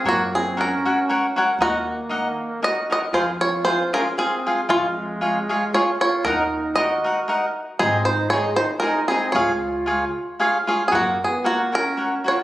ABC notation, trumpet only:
X:1
M:3/4
L:1/16
Q:"Swing" 1/4=116
K:Db
V:1 name="Trumpet"
B,2 C2 D6 z2 | B,8 G2 G2 | F2 F2 F2 D2 C3 z | A,8 F2 F2 |
E4 G6 z2 | C2 E2 A2 E2 E2 C2 | F8 z3 z/2 C/2 | [K:F#] A,2 B,2 A,2 C4 E2 |]